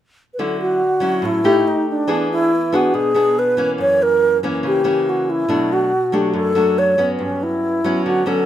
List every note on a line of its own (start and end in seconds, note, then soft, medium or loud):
0.34 0.41 B4 medium
0.39 1.22 D3 medium
0.39 0.81 F#3 medium
0.39 0.81 C#4 medium
0.39 0.81 E4 medium
0.39 0.60 A4 medium
0.61 1.27 F#4 medium
1.00 1.40 F#3 medium
1.00 1.41 C#4 medium
1.00 1.41 E4 medium
1.22 1.63 A2 medium
1.22 1.69 E4 loud
1.44 2.05 A3 medium
1.44 2.05 D#4 medium
1.44 2.05 G4 medium
1.68 1.88 D#4 medium
1.90 2.28 D4 medium
2.08 2.91 E3 medium
2.08 2.51 B3 medium
2.08 2.51 D4 medium
2.08 2.51 G#4 medium
2.32 2.77 E4 loud
2.72 3.12 B3 medium
2.72 3.12 D4 medium
2.72 2.96 F#4 medium
2.72 3.12 G#4 medium
2.94 3.77 B2 medium
2.94 3.40 G#4 loud
3.14 3.54 B3 medium
3.14 3.54 D4 medium
3.14 3.54 G#4 medium
3.39 3.69 B4 medium
3.57 4.39 E3 medium
3.57 4.39 A#3 medium
3.57 4.40 C#4 medium
3.78 4.61 F#2 medium
3.78 4.04 C#5 loud
4.03 4.38 A#4 loud
4.43 4.82 E3 medium
4.43 4.82 A#3 medium
4.43 4.82 C#4 medium
4.63 5.47 C#3 medium
4.63 5.11 G4 medium
4.84 5.45 E3 medium
4.84 5.45 A#3 medium
4.84 5.45 C#4 medium
5.09 5.32 F#4 medium
5.30 5.74 E4 loud
5.48 6.32 B2 medium
5.48 5.91 F#3 medium
5.48 5.91 A3 medium
5.48 5.91 D4 medium
5.73 6.16 F#4 loud
6.12 6.52 F#3 medium
6.12 6.52 A3 medium
6.12 6.52 D4 medium
6.12 6.35 G4 medium
6.33 7.17 F#2 medium
6.33 6.80 A4 loud
6.55 6.94 F#3 medium
6.55 6.95 A3 medium
6.55 6.95 D4 medium
6.79 7.10 C#5 loud
6.98 7.80 F#3 medium
6.98 7.80 B3 medium
6.98 7.80 C#4 medium
7.19 8.02 G2 medium
7.19 7.45 C#4 medium
7.43 8.06 E4 medium
7.84 8.23 F#3 medium
7.84 8.23 B3 medium
7.84 8.24 C#4 medium
8.06 8.46 D3 medium
8.06 8.29 F#4 medium
8.26 8.46 F#3 medium
8.26 8.46 B3 medium
8.26 8.46 C#4 medium
8.26 8.46 A4 medium